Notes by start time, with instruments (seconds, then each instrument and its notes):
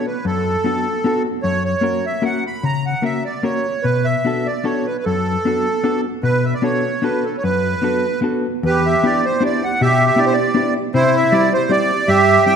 0.06 accordion B4
0.25 hollow-body jazz guitar F#2, accordion A4
0.64 hollow-body jazz guitar B3 D4 F#4 A4
1.04 hollow-body jazz guitar B3 D4 F#4 A4
1.43 hollow-body jazz guitar F#2, accordion C#5
1.65 accordion C#5
1.81 hollow-body jazz guitar A#3 C#4 F#4 A#4
2.06 accordion E5
2.22 hollow-body jazz guitar A#3 C#4 F#4 A#4, accordion F#5
2.47 accordion B5
2.63 hollow-body jazz guitar C#3, accordion A#5
2.86 accordion F#5
3.02 hollow-body jazz guitar A#3 C#4 F#4 A#4, accordion E5
3.25 accordion D5
3.43 hollow-body jazz guitar A#3 C#4 F#4 A#4, accordion C#5
3.82 hollow-body jazz guitar B2, accordion B4
4.05 accordion E5
4.25 hollow-body jazz guitar B3 D4 F#4 A4
4.46 accordion D5
4.64 hollow-body jazz guitar B3 D4 F#4 A4, accordion C#5
4.86 accordion B4
4.98 accordion B4
5.05 hollow-body jazz guitar F#2, accordion A4
5.45 hollow-body jazz guitar B3 D4 F#4 A4
5.84 hollow-body jazz guitar B3 D4 F#4 A4
6.23 hollow-body jazz guitar B2, accordion B4
6.45 accordion E5
6.54 accordion D5
6.62 hollow-body jazz guitar B3 D4 F#4 A4, accordion C#5
7.02 hollow-body jazz guitar B3 D4 F#4 A4, accordion B4
7.24 accordion A4
7.38 accordion C#5
7.43 hollow-body jazz guitar F#2, accordion B4
7.82 hollow-body jazz guitar B3 D4 F#4 A4
8.22 hollow-body jazz guitar B3 D4 F#4 A4
8.63 hollow-body jazz guitar E2, accordion G4 B4
8.86 accordion E5
9.03 hollow-body jazz guitar B3 D4 E4 G4, accordion D5
9.25 accordion C5
9.40 hollow-body jazz guitar B3 D4 E4 G4
9.45 accordion D5
9.64 accordion F#5
9.81 hollow-body jazz guitar B2, accordion G4 E5
10.07 accordion E5
10.16 hollow-body jazz guitar B3 D4 E4 G4, accordion D5
10.26 accordion C5
10.33 accordion D5
10.54 hollow-body jazz guitar B3 D4 E4 G4
10.94 hollow-body jazz guitar C3, accordion E4 C5
11.16 accordion E5
11.32 hollow-body jazz guitar G3 C4 E4 G4, accordion D5
11.54 accordion C5
11.69 hollow-body jazz guitar G3 C4 E4 G4, accordion D5
12.08 hollow-body jazz guitar G2, accordion G4 E5
12.46 hollow-body jazz guitar G3 C4 E4 G4, accordion E5 G5